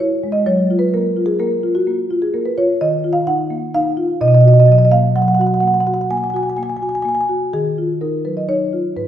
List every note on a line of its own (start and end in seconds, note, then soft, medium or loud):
0.00 0.42 E3 medium
0.00 0.37 E4 soft
0.00 0.14 F#4 soft
0.00 0.30 C#5 medium
0.24 0.47 G#3 soft
0.32 0.46 D#5 medium
0.46 2.76 F#3 medium
0.46 0.76 C#5 medium
0.71 1.08 F4 soft
0.79 0.93 B4 medium
0.94 1.31 A#3 soft
0.94 1.23 A#4 medium
1.17 1.53 F4 soft
1.26 1.40 G#4 medium
1.39 1.77 A#3 soft
1.39 1.73 A#4 medium
1.63 2.00 F4 soft
1.75 2.20 F#4 medium
1.87 2.24 A#3 soft
2.11 2.48 F4 soft
2.22 2.33 G#4 medium
2.34 2.71 A#3 soft
2.34 2.45 A#4 medium
2.46 2.57 B4 medium
2.58 2.80 F4 soft
2.58 2.80 C#5 medium
2.81 4.17 D#3 medium
2.81 3.10 D#5 medium
3.04 3.41 F4 soft
3.13 3.27 F5 medium
3.27 3.64 D#4 soft
3.27 3.72 F#5 medium
3.50 3.88 A#3 soft
3.74 4.12 D#4 medium
3.74 4.19 F5 medium
3.97 4.21 F4 soft
4.21 5.13 B2 medium
4.21 4.28 D#5 medium
4.28 4.34 D#5 medium
4.34 4.41 D#5 medium
4.41 4.82 F#4 soft
4.41 4.48 D#5 medium
4.48 4.54 D#5 medium
4.54 4.60 D#5 medium
4.60 4.66 D#5 medium
4.66 5.06 F#3 soft
4.66 4.72 D#5 medium
4.72 4.78 D#5 medium
4.78 4.85 D#5 medium
4.85 4.89 D#5 medium
4.91 5.15 A#3 soft
4.91 5.14 F5 medium
5.16 7.49 F#3 medium
5.16 5.22 F#5 medium
5.22 5.28 F#5 medium
5.28 5.34 F#5 medium
5.34 5.41 F#5 medium
5.39 5.77 F#4 soft
5.39 5.47 F#5 medium
5.47 5.54 F#5 medium
5.54 5.60 F#5 medium
5.60 6.01 A#3 soft
5.60 5.67 F#5 medium
5.67 5.74 F#5 medium
5.74 5.80 F#5 medium
5.80 5.87 F#5 medium
5.87 6.25 F#4 soft
5.87 5.94 F#5 medium
5.94 6.01 F#5 medium
6.01 6.07 F#5 medium
6.11 6.48 A#3 soft
6.11 6.17 G#5 medium
6.17 6.24 G#5 medium
6.24 6.30 G#5 medium
6.30 6.36 G#5 medium
6.34 6.72 F#4 soft
6.34 6.43 G#5 medium
6.43 6.49 G#5 medium
6.49 6.57 G#5 medium
6.57 6.96 A#3 soft
6.57 6.63 G#5 medium
6.63 6.70 G#5 medium
6.70 6.76 G#5 medium
6.76 6.83 G#5 medium
6.82 7.20 F#4 soft
6.82 6.89 G#5 medium
6.89 6.95 G#5 medium
6.95 7.02 G#5 medium
7.02 7.43 A#3 soft
7.02 7.09 G#5 medium
7.09 7.15 G#5 medium
7.15 7.21 G#5 medium
7.21 7.25 G#5 medium
7.29 7.53 F#4 soft
7.53 8.92 D#3 medium
7.53 7.99 G#4 medium
7.78 8.16 F4 soft
8.01 8.39 D#4 soft
8.01 8.24 A#4 medium
8.25 8.63 F#3 soft
8.25 8.37 B4 soft
8.37 8.49 D#5 medium
8.48 8.87 D#4 soft
8.48 8.94 C#5 medium
8.73 8.97 F4 soft
8.96 9.08 G#2 soft
8.96 9.08 B4 medium